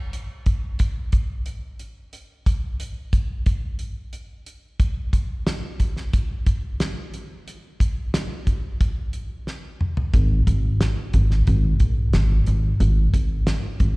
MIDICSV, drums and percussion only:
0, 0, Header, 1, 2, 480
1, 0, Start_track
1, 0, Tempo, 666667
1, 1536, Time_signature, 4, 2, 24, 8
1, 10056, End_track
2, 0, Start_track
2, 0, Title_t, "Drums"
2, 95, Note_on_c, 9, 42, 68
2, 167, Note_off_c, 9, 42, 0
2, 331, Note_on_c, 9, 42, 51
2, 334, Note_on_c, 9, 36, 69
2, 403, Note_off_c, 9, 42, 0
2, 406, Note_off_c, 9, 36, 0
2, 570, Note_on_c, 9, 42, 75
2, 575, Note_on_c, 9, 36, 68
2, 642, Note_off_c, 9, 42, 0
2, 647, Note_off_c, 9, 36, 0
2, 809, Note_on_c, 9, 42, 55
2, 812, Note_on_c, 9, 36, 73
2, 881, Note_off_c, 9, 42, 0
2, 884, Note_off_c, 9, 36, 0
2, 1049, Note_on_c, 9, 42, 65
2, 1121, Note_off_c, 9, 42, 0
2, 1292, Note_on_c, 9, 42, 51
2, 1364, Note_off_c, 9, 42, 0
2, 1533, Note_on_c, 9, 42, 58
2, 1605, Note_off_c, 9, 42, 0
2, 1774, Note_on_c, 9, 36, 74
2, 1777, Note_on_c, 9, 42, 74
2, 1846, Note_off_c, 9, 36, 0
2, 1849, Note_off_c, 9, 42, 0
2, 2015, Note_on_c, 9, 42, 74
2, 2087, Note_off_c, 9, 42, 0
2, 2253, Note_on_c, 9, 36, 71
2, 2253, Note_on_c, 9, 42, 59
2, 2325, Note_off_c, 9, 36, 0
2, 2325, Note_off_c, 9, 42, 0
2, 2491, Note_on_c, 9, 42, 67
2, 2494, Note_on_c, 9, 36, 76
2, 2563, Note_off_c, 9, 42, 0
2, 2566, Note_off_c, 9, 36, 0
2, 2728, Note_on_c, 9, 42, 53
2, 2800, Note_off_c, 9, 42, 0
2, 2972, Note_on_c, 9, 42, 56
2, 3044, Note_off_c, 9, 42, 0
2, 3214, Note_on_c, 9, 42, 52
2, 3286, Note_off_c, 9, 42, 0
2, 3453, Note_on_c, 9, 36, 91
2, 3454, Note_on_c, 9, 42, 70
2, 3525, Note_off_c, 9, 36, 0
2, 3526, Note_off_c, 9, 42, 0
2, 3694, Note_on_c, 9, 36, 69
2, 3696, Note_on_c, 9, 42, 68
2, 3766, Note_off_c, 9, 36, 0
2, 3768, Note_off_c, 9, 42, 0
2, 3935, Note_on_c, 9, 38, 85
2, 3939, Note_on_c, 9, 42, 68
2, 4007, Note_off_c, 9, 38, 0
2, 4011, Note_off_c, 9, 42, 0
2, 4173, Note_on_c, 9, 42, 60
2, 4175, Note_on_c, 9, 36, 65
2, 4245, Note_off_c, 9, 42, 0
2, 4247, Note_off_c, 9, 36, 0
2, 4295, Note_on_c, 9, 38, 28
2, 4367, Note_off_c, 9, 38, 0
2, 4416, Note_on_c, 9, 42, 70
2, 4417, Note_on_c, 9, 36, 78
2, 4488, Note_off_c, 9, 42, 0
2, 4489, Note_off_c, 9, 36, 0
2, 4654, Note_on_c, 9, 42, 62
2, 4655, Note_on_c, 9, 36, 70
2, 4726, Note_off_c, 9, 42, 0
2, 4727, Note_off_c, 9, 36, 0
2, 4896, Note_on_c, 9, 42, 69
2, 4898, Note_on_c, 9, 38, 77
2, 4968, Note_off_c, 9, 42, 0
2, 4970, Note_off_c, 9, 38, 0
2, 5138, Note_on_c, 9, 42, 56
2, 5210, Note_off_c, 9, 42, 0
2, 5383, Note_on_c, 9, 42, 66
2, 5455, Note_off_c, 9, 42, 0
2, 5618, Note_on_c, 9, 36, 70
2, 5622, Note_on_c, 9, 42, 69
2, 5690, Note_off_c, 9, 36, 0
2, 5694, Note_off_c, 9, 42, 0
2, 5861, Note_on_c, 9, 38, 87
2, 5864, Note_on_c, 9, 42, 77
2, 5933, Note_off_c, 9, 38, 0
2, 5936, Note_off_c, 9, 42, 0
2, 6098, Note_on_c, 9, 36, 62
2, 6098, Note_on_c, 9, 42, 59
2, 6170, Note_off_c, 9, 36, 0
2, 6170, Note_off_c, 9, 42, 0
2, 6341, Note_on_c, 9, 36, 83
2, 6341, Note_on_c, 9, 42, 67
2, 6413, Note_off_c, 9, 36, 0
2, 6413, Note_off_c, 9, 42, 0
2, 6574, Note_on_c, 9, 42, 60
2, 6646, Note_off_c, 9, 42, 0
2, 6819, Note_on_c, 9, 38, 40
2, 6891, Note_off_c, 9, 38, 0
2, 7061, Note_on_c, 9, 45, 56
2, 7133, Note_off_c, 9, 45, 0
2, 7179, Note_on_c, 9, 43, 60
2, 7251, Note_off_c, 9, 43, 0
2, 7297, Note_on_c, 9, 42, 67
2, 7298, Note_on_c, 9, 36, 86
2, 7369, Note_off_c, 9, 42, 0
2, 7370, Note_off_c, 9, 36, 0
2, 7539, Note_on_c, 9, 36, 77
2, 7542, Note_on_c, 9, 42, 69
2, 7611, Note_off_c, 9, 36, 0
2, 7614, Note_off_c, 9, 42, 0
2, 7780, Note_on_c, 9, 38, 84
2, 7783, Note_on_c, 9, 42, 78
2, 7852, Note_off_c, 9, 38, 0
2, 7855, Note_off_c, 9, 42, 0
2, 8017, Note_on_c, 9, 42, 61
2, 8019, Note_on_c, 9, 36, 67
2, 8089, Note_off_c, 9, 42, 0
2, 8091, Note_off_c, 9, 36, 0
2, 8140, Note_on_c, 9, 38, 28
2, 8212, Note_off_c, 9, 38, 0
2, 8258, Note_on_c, 9, 42, 67
2, 8262, Note_on_c, 9, 36, 71
2, 8330, Note_off_c, 9, 42, 0
2, 8334, Note_off_c, 9, 36, 0
2, 8494, Note_on_c, 9, 42, 57
2, 8497, Note_on_c, 9, 36, 70
2, 8566, Note_off_c, 9, 42, 0
2, 8569, Note_off_c, 9, 36, 0
2, 8736, Note_on_c, 9, 42, 61
2, 8737, Note_on_c, 9, 38, 77
2, 8808, Note_off_c, 9, 42, 0
2, 8809, Note_off_c, 9, 38, 0
2, 8975, Note_on_c, 9, 42, 51
2, 9047, Note_off_c, 9, 42, 0
2, 9218, Note_on_c, 9, 42, 71
2, 9290, Note_off_c, 9, 42, 0
2, 9458, Note_on_c, 9, 36, 70
2, 9462, Note_on_c, 9, 42, 74
2, 9530, Note_off_c, 9, 36, 0
2, 9534, Note_off_c, 9, 42, 0
2, 9697, Note_on_c, 9, 38, 85
2, 9700, Note_on_c, 9, 42, 73
2, 9769, Note_off_c, 9, 38, 0
2, 9772, Note_off_c, 9, 42, 0
2, 9935, Note_on_c, 9, 42, 54
2, 9937, Note_on_c, 9, 36, 70
2, 10007, Note_off_c, 9, 42, 0
2, 10009, Note_off_c, 9, 36, 0
2, 10056, End_track
0, 0, End_of_file